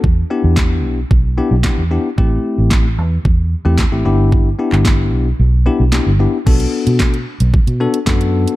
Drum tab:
CC |----------------|----------------|----------------|x---------------|
HH |----------------|----------------|----------------|-x-x-x-x-x-x-x-x|
CP |----x-------x---|----x-------x---|---xx-------x---|----x-------x---|
SD |----o-------o---|----o-------o---|----o-------o---|----o-------o---|
BD |o---o---o---o---|o---o---o---o---|o---o-----------|o---o---o---o---|